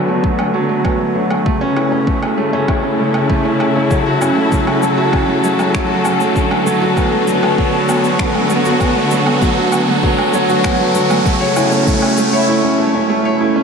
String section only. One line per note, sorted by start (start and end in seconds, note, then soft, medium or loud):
0.00 1.46 D3 medium
0.00 2.44 B3 medium
0.00 2.44 F#4 medium
0.00 1.46 A4 medium
1.46 6.36 C#3 medium
1.65 3.91 A3 medium
2.24 7.34 E4 medium
2.57 12.48 A4 medium
4.15 6.36 F#3 medium
6.36 11.26 D3 medium
6.51 12.07 B3 medium
6.99 12.06 F#4 medium
11.26 12.48 C#3 medium
11.68 12.48 A3 medium
12.36 12.49 E4 medium